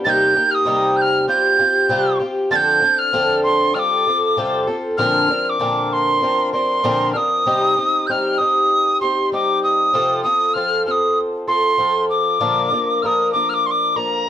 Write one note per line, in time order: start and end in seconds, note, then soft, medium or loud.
0.04 0.36 C3 medium
0.04 0.36 G3 medium
0.04 0.36 A#3 medium
0.04 0.35 D#4 medium
0.04 0.35 G4 medium
0.04 0.10 A6 medium
0.09 0.52 G6 loud
0.36 0.66 A#3 soft
0.36 0.66 D#4 soft
0.36 0.66 G4 soft
0.51 0.98 D#6 medium
0.51 0.55 F6 medium
0.65 1.27 C3 medium
0.65 1.26 G3 medium
0.65 1.28 A#3 medium
0.65 1.28 D#4 medium
0.65 1.28 G4 medium
0.97 1.02 G6 medium
1.01 1.28 F6 medium
1.28 1.59 G3 medium
1.28 1.59 C4 medium
1.28 1.59 F4 medium
1.28 1.58 G4 medium
1.28 2.17 G6 medium
1.59 1.89 C4 soft
1.59 1.90 F4 soft
1.59 1.90 G4 medium
1.89 2.20 C3 medium
1.89 2.20 G3 medium
1.89 2.20 C4 medium
1.89 2.20 F4 medium
1.89 2.18 G4 medium
2.20 2.50 C4 soft
2.20 2.52 F4 soft
2.20 2.51 G4 medium
2.51 2.82 D3 medium
2.51 2.82 F3 medium
2.51 2.82 C4 medium
2.51 2.81 D4 medium
2.51 2.80 A4 medium
2.51 2.57 A6 loud
2.56 3.00 G6 loud
2.82 3.12 C4 soft
2.82 3.13 D4 soft
2.82 3.13 A4 medium
2.98 3.43 F6 medium
3.13 3.75 D3 medium
3.13 3.74 F3 medium
3.13 3.75 C4 medium
3.13 3.75 D4 medium
3.13 3.75 A4 medium
3.43 3.76 C6 medium
3.74 4.06 G3 medium
3.74 4.06 C4 medium
3.74 4.06 F4 medium
3.74 4.05 A4 medium
3.74 3.80 F6 medium
3.79 4.67 D6 medium
4.07 4.37 C4 soft
4.07 4.37 F4 soft
4.07 4.37 A4 soft
4.37 4.68 C3 medium
4.37 4.68 G3 medium
4.37 4.68 C4 medium
4.37 4.67 F4 medium
4.37 4.66 A4 medium
4.67 4.98 C4 soft
4.67 4.99 F4 soft
4.67 4.98 A4 medium
4.97 5.29 A#2 medium
4.97 5.29 D3 medium
4.97 5.30 F3 medium
4.97 5.30 C4 medium
4.97 5.29 D4 medium
4.97 5.28 A#4 medium
4.97 5.45 F6 loud
5.30 5.59 F3 soft
5.30 5.59 C4 soft
5.30 5.59 D4 soft
5.30 5.60 A#4 soft
5.45 5.50 F6 medium
5.49 5.94 D6 medium
5.60 6.22 A#2 medium
5.60 6.22 D3 medium
5.60 6.21 F3 medium
5.60 6.21 C4 medium
5.60 6.22 D4 medium
5.60 6.22 A#4 medium
5.93 6.52 C6 medium
6.22 6.53 F3 soft
6.22 6.53 C4 medium
6.22 6.52 D4 medium
6.22 6.52 A#4 medium
6.52 6.83 F3 soft
6.52 6.83 C4 soft
6.52 6.83 D4 soft
6.52 6.84 A#4 medium
6.52 7.10 C6 medium
6.83 7.15 A#2 medium
6.83 7.15 D3 medium
6.83 7.15 F3 medium
6.83 7.14 C4 medium
6.83 7.14 D4 medium
6.83 7.14 A#4 loud
7.13 7.45 C4 soft
7.13 7.46 D4 soft
7.13 7.46 A#4 soft
7.13 7.18 F6 loud
7.17 7.46 F3 soft
7.17 8.08 D#6 loud
7.45 7.77 C3 medium
7.45 7.77 G3 medium
7.45 7.77 C4 medium
7.45 7.76 D#4 medium
7.45 7.76 G4 medium
7.77 8.08 C4 soft
7.77 8.08 D#4 soft
7.77 8.08 G4 soft
8.07 8.39 G3 soft
8.07 8.39 C4 medium
8.07 8.40 D#4 medium
8.07 8.12 G6 medium
8.11 8.39 G4 medium
8.11 8.39 F6 medium
8.38 9.01 D#4 soft
8.38 9.00 G4 soft
8.38 9.00 D#6 medium
8.42 9.02 C4 soft
9.01 9.32 C4 soft
9.01 9.32 D#4 soft
9.01 9.32 G4 soft
9.01 9.29 C6 medium
9.32 9.93 G3 soft
9.32 9.93 C4 soft
9.32 9.94 D#4 medium
9.32 9.95 G4 medium
9.32 9.61 D6 medium
9.63 10.21 D#6 medium
9.93 10.24 C3 medium
9.93 10.24 F3 medium
9.93 10.25 C4 medium
9.93 10.24 F4 medium
9.93 10.22 A4 medium
10.23 10.55 C4 soft
10.23 10.55 F4 soft
10.23 10.55 A4 soft
10.23 10.55 D#6 medium
10.54 10.86 F3 soft
10.54 10.87 C4 soft
10.54 10.86 F4 soft
10.54 10.85 A4 soft
10.54 10.85 F6 medium
10.86 11.47 C4 soft
10.86 11.47 F4 soft
10.86 11.46 A4 soft
10.86 10.92 F6 medium
10.91 11.19 D#6 medium
11.47 11.77 C4 soft
11.47 11.78 F4 soft
11.47 11.79 A4 soft
11.47 12.06 C6 medium
11.78 12.39 F3 medium
11.78 12.40 C4 medium
11.78 12.41 F4 medium
11.78 12.41 A4 medium
12.10 13.04 D6 medium
12.40 12.71 A#2 medium
12.40 12.72 D3 medium
12.40 12.72 F3 medium
12.40 12.72 A#3 medium
12.40 12.71 D4 medium
12.40 12.70 A#4 medium
12.71 13.02 F3 soft
12.71 13.03 A#3 soft
12.71 13.03 D4 soft
12.71 13.02 A#4 soft
13.02 13.34 F3 medium
13.02 13.34 A#3 medium
13.02 13.34 D4 medium
13.02 13.33 A#4 medium
13.02 13.07 F6 medium
13.06 13.32 D#6 medium
13.32 13.96 A#3 soft
13.32 13.95 D4 soft
13.32 13.95 A#4 soft
13.32 13.50 D6 medium
13.36 13.97 F3 soft
13.49 13.55 F6 medium
13.54 13.67 D6 medium
13.66 13.72 C6 medium
13.71 13.98 D6 medium
13.96 14.26 F3 soft
13.96 14.27 A#3 soft
13.96 14.27 D4 soft
13.96 14.27 A#4 soft
13.96 14.29 A#5 medium